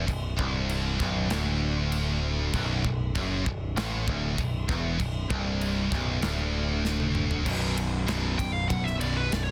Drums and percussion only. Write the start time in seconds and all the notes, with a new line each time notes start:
0.08 kick, crash
0.39 kick
0.69 crash
1.00 kick, snare
1.30 snare, crash
1.92 crash
2.54 kick, crash
2.85 kick
3.15 kick, crash
3.46 kick
3.77 snare, crash
4.08 kick
4.38 kick, crash
4.69 kick, snare
5.00 kick, crash
5.30 kick
5.61 crash
5.92 kick, snare
6.22 snare, crash
6.85 snare
7.00 high tom
7.15 mid tom
7.31 floor tom
7.46 kick, crash
7.77 ride
8.08 snare, ride
8.39 kick, ride
8.70 kick, ride
8.87 snare
9.01 ride
9.32 snare, ride